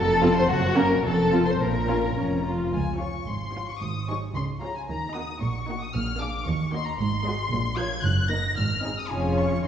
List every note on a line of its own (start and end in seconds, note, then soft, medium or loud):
0.00 0.40 F1 medium
0.00 0.41 F2 medium
0.00 0.35 A4 loud
0.00 0.36 A5 medium
0.22 0.35 C4 medium
0.22 0.35 F4 medium
0.37 0.43 C5 medium
0.37 0.50 C6 medium
0.49 0.95 F#1 medium
0.49 0.95 F#2 medium
0.49 0.77 F#4 loud
0.49 0.77 F#5 medium
0.75 0.89 A#3 medium
0.75 0.89 C#4 medium
0.75 1.04 A#4 medium
0.75 0.85 A#5 medium
1.04 1.51 F1 medium
1.04 1.51 F2 medium
1.04 1.46 A4 loud
1.04 1.45 A5 medium
1.32 1.45 C4 medium
1.32 1.45 F4 medium
1.46 1.61 C5 medium
1.46 1.52 C6 medium
1.59 2.07 A#1 medium
1.59 2.08 A#2 medium
1.59 2.46 A#4 medium
1.59 2.44 A#5 medium
1.88 2.02 C#4 medium
1.88 2.02 F4 medium
2.17 2.64 F1 medium
2.17 2.64 F2 medium
2.17 2.43 C#4 medium
2.44 2.72 F4 medium
2.73 3.16 C#2 soft
2.73 3.16 C#2 medium
2.73 2.99 G#5 medium
2.99 3.20 F3 soft
2.99 3.20 F4 soft
2.99 3.21 F4 soft
2.99 3.21 C#5 soft
2.99 3.26 C#6 medium
3.27 3.70 G#1 soft
3.27 3.70 G#2 soft
3.27 3.68 C6 medium
3.54 3.74 F3 soft
3.54 3.74 F4 soft
3.54 3.75 F4 soft
3.54 3.75 C#5 soft
3.69 3.82 C#6 medium
3.81 4.24 G#1 medium
3.81 4.24 G#2 soft
3.81 4.08 D#6 medium
4.08 4.28 F#3 soft
4.08 4.28 D#4 soft
4.08 4.28 G#4 soft
4.08 4.28 C5 soft
4.08 4.16 C#6 medium
4.34 4.77 C#2 medium
4.34 4.77 C#3 soft
4.34 4.43 C6 medium
4.61 4.82 F3 soft
4.61 4.82 F4 soft
4.61 4.82 G#4 soft
4.61 4.82 C#5 soft
4.61 4.75 A#5 medium
4.76 4.81 G#5 medium
4.89 5.31 D#2 medium
4.89 5.31 D#3 medium
4.89 5.15 A#5 medium
5.15 5.35 A#3 soft
5.15 5.35 D#4 soft
5.15 5.35 F#4 soft
5.15 5.35 F#5 soft
5.15 5.42 D#6 medium
5.42 5.84 A#1 medium
5.42 5.84 A#2 medium
5.42 5.81 C#6 medium
5.68 5.88 A#3 soft
5.68 5.88 D#4 medium
5.68 5.89 F#4 soft
5.68 5.88 F#5 medium
5.82 5.95 D#6 medium
5.95 6.36 A#1 medium
5.95 6.36 A#2 medium
5.95 6.21 F6 medium
6.20 6.40 A#3 medium
6.20 6.40 D4 soft
6.20 6.40 G#4 soft
6.20 6.41 F5 medium
6.20 6.48 D6 medium
6.46 6.89 D#2 medium
6.46 6.74 C#6 medium
6.73 6.93 A#3 medium
6.73 6.93 D#4 soft
6.73 6.93 F#4 medium
6.73 6.93 D#5 medium
6.73 6.87 C6 medium
6.88 7.00 A#5 medium
6.99 7.41 G#1 medium
6.99 7.41 G#2 medium
6.99 7.77 C6 medium
7.25 7.45 G#3 medium
7.25 7.45 F#4 medium
7.25 7.46 G#4 medium
7.25 7.46 D#5 medium
7.51 7.93 A#1 medium
7.51 7.94 A#2 medium
7.77 7.97 F3 medium
7.77 7.97 F4 medium
7.77 7.98 A#4 medium
7.77 7.98 C#5 medium
7.77 8.05 G#6 medium
8.04 8.46 F#1 medium
8.04 8.47 F#2 medium
8.04 8.31 F#6 medium
8.31 8.51 A#3 medium
8.31 8.51 D#4 medium
8.31 8.51 A#4 medium
8.31 8.51 D#5 medium
8.31 8.58 A#6 medium
8.57 9.00 G#1 medium
8.57 9.00 G#2 medium
8.57 8.97 F6 medium
8.84 9.04 C4 medium
8.84 9.04 D#4 medium
8.84 9.04 G#4 medium
8.84 9.05 D#5 medium
8.99 9.12 D#6 medium
9.10 9.62 F1 soft
9.10 9.62 F2 medium
9.10 9.62 C#4 medium
9.10 9.62 F4 medium
9.10 9.62 G#4 medium
9.10 9.62 C#5 medium
9.10 9.38 G#5 medium
9.39 9.66 C#6 medium